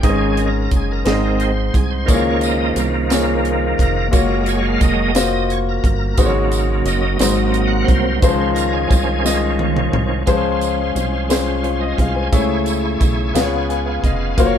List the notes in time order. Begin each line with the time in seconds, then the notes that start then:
0.03 G#1 G#2 D#3 G#3 C4 C#4 D#4 G#4 D#5, kick, closed hi-hat
0.09 C#4
0.37 A#4, closed hi-hat
0.71 F#1, kick, closed hi-hat
0.76 G#4
0.92 A#4
1.04 G#1 G#2 D#3 G#3 C4 D#4 G#4 D#5, snare, closed hi-hat
1.40 C5, closed hi-hat
1.74 C2 G#4, kick, closed hi-hat
1.91 C5
2.05 C#2 D#3 F3 A#3 C#4 E4 G#4 C#5, kick, closed hi-hat, tambourine
2.09 C#5
2.15 F4
2.41 D#5, closed hi-hat, tambourine
2.76 C2, closed hi-hat, tambourine
3.10 A#3 F4 G#4 C#5, snare, closed hi-hat, tambourine
3.45 closed hi-hat
3.78 F1 A#4, kick, closed hi-hat
4.11 F#1 F#3 G#3 A#3 F4 F#4 C#5, kick, closed hi-hat, tambourine
4.46 C#5, closed hi-hat, tambourine
4.66 F5
4.81 F1 D#5, kick, closed hi-hat, tambourine
5.15 A#3 F4 F#4 C5, snare, closed hi-hat, tambourine
5.50 C#5, closed hi-hat
5.69 A#4
5.84 G1, kick, closed hi-hat
6.18 G#1 G#2 C#3 F#3 G#3 A#3 D#4 F#4 C5, kick, closed hi-hat, tambourine
6.25 C#5
6.52 closed hi-hat, tambourine
6.85 F#1 D#5, closed hi-hat, tambourine
7.19 G#1 G#2 C3 F#3 G#3 A#3 D#4 F#4 C5, snare, closed hi-hat, tambourine
7.52 D#5, closed hi-hat
7.67 F#5
7.84 C5
7.88 C2, kick, closed hi-hat
8.20 C#2 D#3 F3 G#3 C#4 F4, kick, closed hi-hat, tambourine
8.24 C5
8.55 A#4, closed hi-hat, tambourine
8.73 G#4
8.90 C2, kick, closed hi-hat, tambourine
9.24 G#3 C#4 F4 D#5, snare, tambourine
9.59 high tom
9.77 mid tom
9.93 C2, mid tom
10.26 C#2 F3 G#3 C#4 F4 C5, kick, closed hi-hat, tambourine
10.61 closed hi-hat, tambourine
10.96 C2, closed hi-hat, tambourine
11.29 G#3 C#4 F4 C5, snare, closed hi-hat, tambourine
11.63 F4 C#5, closed hi-hat
11.80 D#5
11.97 C2 G#4 F5, kick, closed hi-hat
12.15 C5 G#5
12.32 C#2 C#3 A3 E4 G#4 C5 C#5, kick, closed hi-hat, tambourine
12.40 C#5
12.66 closed hi-hat, tambourine
13.01 B1, kick, closed hi-hat, tambourine
13.34 C#2 C#3 B3 F4 G#4 B4 C#5, snare, closed hi-hat, tambourine
13.42 C#5
13.69 C#5 G#5, closed hi-hat
13.86 F5
14.03 F1 D#5 F5, kick, closed hi-hat
14.37 F#1 F#3 A#3 F4 F#4 C5 C#5 F5, kick, closed hi-hat, tambourine
14.46 C#5